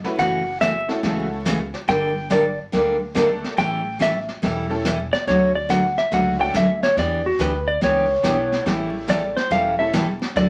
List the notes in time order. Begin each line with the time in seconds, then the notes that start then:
0.04 A3 C#4 E4 F#4 B4, snare
0.18 F#1 C#3 E3 A3 C#4 F#4 F#5, brush sweep, kick, snare
0.61 C#3 E3 A3 C#4 F#4 E5, kick, snare, hi-hat pedal
0.88 A3 C#4 E4 F#4 A4, snare
1.03 C#2 C#3 E3 A3 C#4 F#4, brush sweep, kick, snare
1.45 C#3 E3 A3 C#4 F#4, kick, snare, hi-hat pedal
1.74 snare
1.88 G1 D3 G3 A#3 D4 A4 G5, brush sweep, kick, snare
2.30 D3 G3 A#3 D4 A4 D5, kick, snare, hi-hat pedal
2.72 D2 D3 G3 A#3 D4 A4, brush sweep, kick, snare
3.15 D3 G3 A3 A#3 D4 G4 A4, kick, snare, hi-hat pedal
3.44 snare
3.57 A1 E3 G3 C#4 E4 A4 G5, brush sweep, kick, snare
3.99 E3 G3 C#4 E4 A4 E5, kick, snare, hi-hat pedal
4.29 snare
4.42 E1 E3 G3 C#4 E4 A4, brush sweep, kick, snare
4.69 A3 C#4 E4 G4 A4
4.85 E3 G3 C#4 E4 A4, kick, snare, hi-hat pedal
5.13 D5, snare
5.27 D2 D3 F#3 A3 C#4 F#4 C#5, brush sweep, kick, snare
5.55 D5
5.69 D3 F#3 A3 C#4 F#4 F#5, kick, snare, hi-hat pedal
5.98 E5, snare
6.12 C#2 D3 F#3 A3 C#4 F#4 F#5, brush sweep, kick, snare
6.39 A3 C#4 D4 F#4 A4 G5
6.54 D2 D3 F#3 A3 C#4 F#4 E5, kick, snare, hi-hat pedal
6.83 C#5, snare
6.97 E2 E3 B3 D4 G4 D5, brush sweep, kick, snare
7.26 F#4
7.39 D2 E3 B3 D4 G4 B4, kick, snare, hi-hat pedal
7.68 D5
7.81 C#2 E3 B3 D4 G4 C#5, brush sweep, kick, snare
8.23 B1 E3 G3 B3 D4 E4 G4, kick, snare, hi-hat pedal
8.52 snare
8.65 A1 E3 G3 A3 C#4 E4 G4 A4, brush sweep, kick, snare
9.08 E3 G3 C#4 E4 A4 D5, kick, snare, hi-hat pedal
9.37 C5, snare
9.51 E1 E3 G3 C#4 E4 A4 F5, brush sweep, kick, snare
9.79 G3 A3 C#4 E4 A4 E5
9.93 E3 G3 C#4 E4 A4, kick, snare, hi-hat pedal
10.22 snare
10.36 D2 D3 F#3 A3 E4 F#4 D5, brush sweep, kick, snare